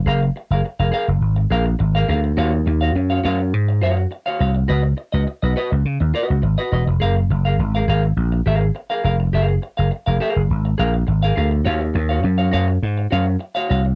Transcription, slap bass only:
\new Staff \with { instrumentName = "Slap bass" } { \clef bass \time 4/4 \key fis \major \tempo 4 = 103 fis,,8 r16 fis,,16 r16 eis,,16 r16 fis,,16 gis,,8 ais,,8 gis,,8 d,8 | dis,8 dis,8 fis,8 fis,8 gis,8 fis,8 r8 bis,,8 | cis,8 r16 cis,16 r16 b,,16 r16 cis,16 cis16 dis,16 r16 cis,16 gis,,16 r16 e,,16 eis,,16 | fis,,8 fis,,8 gis,,8 gis,,8 ais,,8 gis,,8 r8 eis,,8 |
fis,,8 r16 fis,,16 r16 eis,,16 r16 fis,,16 gis,,8 ais,,8 gis,,8 d,8 | dis,8 dis,8 fis,8 fis,8 gis,8 fis,8 r8 bis,,8 | }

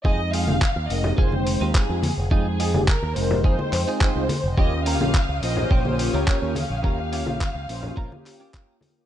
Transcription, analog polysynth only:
\new Staff \with { instrumentName = "Analog polysynth" } { \time 4/4 \key f \minor \tempo 4 = 106 <aes c' ees' g''>8. <aes c' ees' g'>16 r8 <aes c' ees' bes'>8. <aes c' ees' g''>4 <aes c' ees' f'>16 r8 | <aes c' ees' g''>8. <aes c' ees' g'>16 r8 <aes c' ees' bes'>8. <aes c' ees' g''>4 <aes c' ees' f'>16 r8 | <bes des' f' g'>8. <bes des' f' g'>16 r8 <bes des' f' c''>8. <bes des' f' g'>4 <bes des' f' g'>16 r8 | <bes des' f' g'>8. <bes des' f' g'>16 r8 <bes des' f' c''>8. <bes des' f' g'>16 <bes des' f' g'>8 <bes des' f' bes'>8 <bes des' f' g'>16 <bes des' f' g'>16 | }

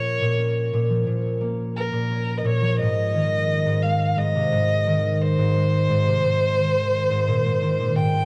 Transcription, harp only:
\new Staff \with { instrumentName = "Harp" } { \clef bass \time 4/4 \key aes \mixolydian \tempo 4 = 87 bes16 bes,16 des'8 bes,16 f16 bes,8 bes8. bes,16 des'8 bes,16 f16 | aes,8 ees8. aes,16 aes8 aes,16 c16 aes,8 ees8. aes,16 | aes8 aes,16 c16 aes,8 ees8. aes,16 bes,16 aes,16 ees16 bes,16 aes,16 aes,16 | }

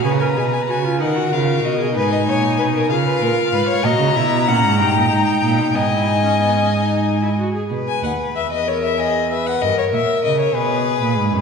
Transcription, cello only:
\new Staff \with { instrumentName = "Cello" } { \clef bass \time 6/8 \key cis \mixolydian \tempo 4. = 63 cis8 b,8 cis8 dis8 cis8 b,8 | gis,8 ais,8 b,8 cis8 ais,8 gis,8 | \key gis \minor ais,16 cis16 b,8 ais,16 gis,16 g,16 ais,16 gis,8 ais,16 b,16 | gis,2~ gis,8 r8 |
b,8 dis,8 e,2 | g,8 ais,8 cis8 b,8. ais,16 gis,16 fis,16 | }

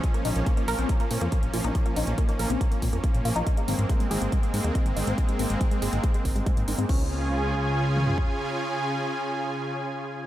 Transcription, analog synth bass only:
\new Staff \with { instrumentName = "Analog synth bass" } { \clef bass \time 4/4 \key des \major \tempo 4 = 140 r8 bes,,16 bes,,16 r8 bes,,16 bes,,16 r8 bes,16 f,16 r16 bes,,16 bes,,16 bes,,16 | r8 bes,,16 bes,,16 r8 bes,,16 bes,,16 r8 bes,16 f,16 r16 bes,,16 bes,,16 bes,,16 | r8 aes,,16 aes,,16 r8 aes,,16 aes,,16 r8 aes,16 ees,16 r16 aes,,16 aes,,16 aes,,16 | r8 aes,,16 aes,,16 r8 aes,,16 aes,,16 r8 aes,,16 aes,,16 r16 aes,16 aes,,16 aes,16 |
des,2. r4 | r1 | }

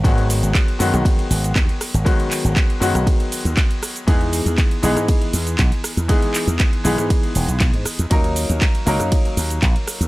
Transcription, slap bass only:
\new Staff \with { instrumentName = "Slap bass" } { \clef bass \time 4/4 \key gis \minor \tempo 4 = 119 gis,,8. gis,,16 r8 fis,16 b,,16 r8 gis,,8 dis,16 r8 gis,,16 | r8. gis,,16 r8 fis,16 b,,16 r8. dis,16 r4 | e,8. e,16 r8 b,,16 gis,16 r8 e,8 b,,16 r8 e,16 | r8. e,16 r8 b,,16 gis,16 r8 e,,16 b,,8 gis,16 r16 e,16 |
dis,8. dis,16 r8 cis,16 fis,16 r8 dis,8 ais,,16 r8 dis,16 | }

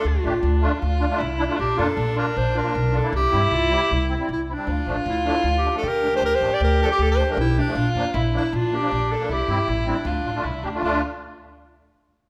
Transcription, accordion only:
\new Staff \with { instrumentName = "Accordion" } { \time 4/4 \key d \minor \tempo 4 = 156 r8 <a d' g'>16 r8. <a d' f'>16 r8. <d' f'>16 <a d' f'>16 r8 <d' e'>16 <a d' f'>16 | r8 <bes d' f'>16 r8. <bes d' f'>16 r8. <d' f'>16 <bes d' f'>16 r8 <d' f'>16 <bes d' e'>16 | r8 <g c' e'>16 r8. <g c' e'>16 r8. <c' e'>16 <g c' e'>16 r8 <c' e'>16 <g c' d'>16 | r8 <f a d'>16 r8. <f a d'>16 r8. <a d'>16 <f a d'>16 r8 <a d'>16 <f a d'>16 |
r8 <f a d'>16 r8. <f a d'>16 r8. <a d'>16 <f a d'>16 r8 <a d'>16 <f a d'>16 | r8 <f bes d'>16 r8. <f bes d'>16 r8. <bes d'>16 <f bes d'>16 r8 <bes d'>16 <f bes d'>16 | r8 <g c' e'>16 r8. <g c' e'>16 r8. <d' f'>16 <a d' f'>16 r8 <d' g'>16 <a d' f'>16 | <a d' f'>8 r2. r8 | }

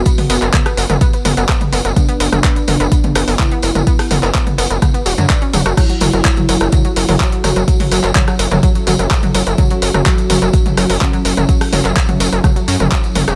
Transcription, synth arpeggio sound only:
\new Staff \with { instrumentName = "Synth arpeggio sound" } { \clef bass \time 4/4 \key fis \minor \tempo 4 = 126 b16 b16 b16 b16 b16 b16 b16 b16 b16 b16 b16 b16 b16 b16 b16 b16 | b16 b16 b16 b16 b16 b16 b16 b16 b16 b16 b16 b16 b16 b16 b16 b16 | b16 b16 b16 b16 b16 b16 b16 b16 b16 b16 fis'16 d'16 d''16 cis'16 fis16 fis'16 | fis16 fis16 fis16 fis16 fis16 fis16 fis16 fis16 fis16 fis16 fis16 fis16 fis16 fis16 fis16 fis16 |
fis16 fis16 fis16 fis16 fis16 fis16 fis16 fis16 fis16 fis16 fis16 fis16 fis16 fis16 fis16 fis16 | fis16 fis16 fis16 fis16 fis16 fis16 fis16 fis16 fis16 fis16 fis16 fis16 fis16 fis16 fis16 fis16 | fis16 fis16 fis16 fis16 fis16 fis16 fis16 fis16 fis16 fis16 cis'16 fis16 fis16 fis16 cis'16 fis16 | }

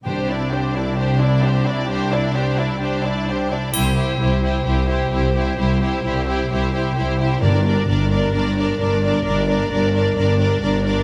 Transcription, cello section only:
\new Staff \with { instrumentName = "Cello section" } { \clef bass \time 4/4 \key c \mixolydian \tempo 4 = 131 c,1~ | c,2.~ c,8 r8 | c,4 c,4 c,4 c,4 | c,4 c,4 c,4 c,4 |
g,4 g,4 g,4 g,4 | g,4 g,4 g,4 g,4 | }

